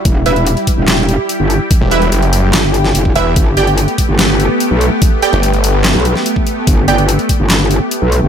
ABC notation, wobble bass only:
X:1
M:4/4
L:1/16
Q:1/4=145
K:G
V:1 name="Wobble bass" clef=bass
E,,,2 E,,,3 z2 E,,,4 z2 G,,,2 z | z8 G,,,4 F,,,2 z2 | G,,,2 G,,,3 z2 G,,,4 z2 B,,,2 z | z8 z B,,,2 z4 z |
G,,,2 G,,,3 z2 G,,,4 z2 B,,,2 G,,, |]